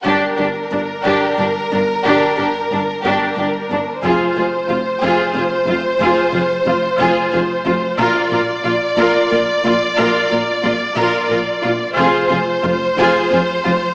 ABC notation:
X:1
M:6/8
L:1/8
Q:3/8=60
K:Gphr
V:1 name="Violin section"
B6- | B6 | c6- | c6 |
d6- | d6 | c6 |]
V:2 name="Violin section"
G G D G G D | G G D G G D | A A F A A F | A A F A A F |
B B F B B F | B B F B B F | A A F A A F |]
V:3 name="Viola section"
D D D D D D | D D D D D D | F F F F F F | F F F F F F |
F F F F F F | F F F F F F | F F F F F F |]
V:4 name="Cello section" clef=bass
G,, G,, G,, G,, G,, G,, | G,, G,, G,, G,, G,, G,, | F,, F,, F,, F,, F,, F,, | F,, F,, F,, F,, F,, F,, |
B,, B,, B,, B,, B,, B,, | B,, B,, B,, B,, B,, B,, | F,, F,, F,, F,, F,, F,, |]
V:5 name="Double bass section" clef=bass
G,,, G,,, G,,, G,,, G,,, G,,, | G,,, G,,, G,,, G,,, G,,, G,,, | F,,, F,,, F,,, F,,, F,,, F,,, | F,,, F,,, F,,, F,,, F,,, F,,, |
B,,, B,,, B,,, B,,, B,,, B,,, | B,,, B,,, B,,, B,,, B,,, B,,, | F,,, F,,, F,,, F,,, F,,, F,,, |]